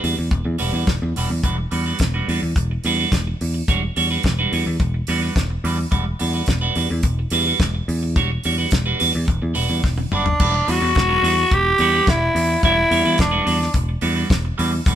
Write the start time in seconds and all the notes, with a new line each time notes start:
0.03 E2 G3 D4 F#4 B4, open hi-hat
0.17 E2, muted clean electric guitar stroke
0.31 E1, muted clean electric guitar stroke, kick, closed hi-hat
0.45 E2, muted clean electric guitar stroke
0.58 E1 G3 D4 F#4 B4, open hi-hat
0.73 E2 G3 D4 F#4 B4
0.87 E1, kick, snare, closed hi-hat
1.02 E2, muted clean electric guitar stroke
1.16 E1 G3 D4 F#4 B4, open hi-hat
1.30 E2, muted clean electric guitar stroke
1.43 E1 G3 D4 F#4 B4, kick, closed hi-hat
1.58 muted clean electric guitar stroke
1.71 E2 G3 D4 F#4 B4, open hi-hat
1.86 G3 D4 F#4 B4
1.99 E1, muted clean electric guitar stroke, kick, snare, closed hi-hat
2.14 G3 D4 F#4 B4
2.28 E2 G3 D4 F#4 B4, open hi-hat
2.42 E2, muted clean electric guitar stroke
2.56 E1, muted clean electric guitar stroke, kick, closed hi-hat
2.71 muted clean electric guitar stroke
2.84 E2 G3 D4 F#4 B4, open hi-hat
2.99 G3 D4 F#4 B4
3.12 E1, muted clean electric guitar stroke, kick, snare, closed hi-hat
3.27 muted clean electric guitar stroke
3.41 E2, open hi-hat
3.54 muted clean electric guitar stroke
3.68 E1 G3 D4 F#4 C#5, kick, closed hi-hat
3.83 muted clean electric guitar stroke
3.96 E2 G3 D4 F#4 C#5, open hi-hat
4.11 G3 D4 F#4 B4
4.23 E1, kick, snare, closed hi-hat
4.39 G3 D4 F#4 B4
4.52 E2 G3 D4 F#4 B4, open hi-hat
4.66 E2, muted clean electric guitar stroke
4.80 E1, muted clean electric guitar stroke, kick, closed hi-hat
4.94 muted clean electric guitar stroke
5.07 E2 G3 D4 F#4 B4, open hi-hat
5.21 G3 D4 F#4 B4
5.36 E1, kick, snare, closed hi-hat
5.50 muted clean electric guitar stroke
5.64 E2 G3 D4 F#4 B4, open hi-hat
5.79 muted clean electric guitar stroke
5.91 E1 G3 D4 F#4 B4, kick, closed hi-hat
6.05 muted clean electric guitar stroke
6.19 E2 G3 D4 F#4 B4, open hi-hat
6.34 G3 D4 F#4 B4
6.46 E1, kick, snare, closed hi-hat
6.61 G3 D4 F#4 B4
6.75 E2 G3 D4 F#4 B4, open hi-hat
6.90 E2, muted clean electric guitar stroke
7.03 E1, muted clean electric guitar stroke, kick, closed hi-hat
7.19 muted clean electric guitar stroke
7.30 E2 G3 D4 F#4 B4, open hi-hat
7.47 G3 D4 F#4 B4
7.60 E1, muted clean electric guitar stroke, kick, snare, closed hi-hat
7.75 muted clean electric guitar stroke
7.88 E2, open hi-hat
8.03 muted clean electric guitar stroke
8.16 E1 G3 D4 F#4 C#5, kick, closed hi-hat
8.32 muted clean electric guitar stroke
8.43 E2 G3 D4 F#4 C#5, open hi-hat
8.58 G3 D4 F#4 B4
8.71 E1, muted clean electric guitar stroke, kick, snare, closed hi-hat
8.86 G3 D4 F#4 B4
8.99 E2 G3 D4 F#4 B4, open hi-hat
9.13 E2, muted clean electric guitar stroke
9.26 E1, muted clean electric guitar stroke, kick, closed hi-hat
9.42 E2, muted clean electric guitar stroke
9.54 E1 G3 D4 F#4 B4, open hi-hat
9.68 E2 G3 D4 F#4 B4
9.84 E1, kick, snare
9.98 muted clean electric guitar stroke, high tom
10.12 F#1 G3 D4 F#4 B4, mid tom
10.26 muted clean electric guitar stroke, floor tom
10.40 E1 G3 D4 F#4 B4, kick, crash
10.55 muted clean electric guitar stroke
10.67 E2 G3 D4 F#4 B4, open hi-hat
10.81 E2 G3 D4 F#4 B4
10.95 E1, muted clean electric guitar stroke, kick, snare, closed hi-hat
11.08 G3 D4 F#4 B4
11.23 E2 G3 D4 F#4 B4, open hi-hat
11.36 muted clean electric guitar stroke
11.51 E1 G4, muted clean electric guitar stroke, kick, closed hi-hat
11.66 muted clean electric guitar stroke
11.78 E2 G3 D4 F#4 B4, open hi-hat
11.93 G3 D4 F#4 B4
12.07 E1 E4, kick, snare, closed hi-hat
12.23 muted clean electric guitar stroke
12.35 E2, open hi-hat
12.51 muted clean electric guitar stroke
12.63 E1 G3 D4 E4 F#4 C#5, kick, closed hi-hat
12.77 muted clean electric guitar stroke
12.91 E2 G3 D4 F#4 C#5, open hi-hat
13.05 E2 G3 D4 F#4 B4
13.18 E1 D4, muted clean electric guitar stroke, kick, snare, closed hi-hat
13.31 G3 D4 F#4 B4
13.45 E2 G3 D4 F#4 B4, open hi-hat
13.61 muted clean electric guitar stroke, snare
13.74 E1, muted clean electric guitar stroke, kick, closed hi-hat
13.89 muted clean electric guitar stroke
14.01 E2 G3 D4 F#4 B4, open hi-hat
14.15 G3 D4 F#4 B4
14.30 E1, kick, snare, closed hi-hat
14.45 muted clean electric guitar stroke
14.58 E2 G3 D4 F#4 B4, open hi-hat
14.72 muted clean electric guitar stroke
14.86 E1 G3 D4 F#4 B4, kick, closed hi-hat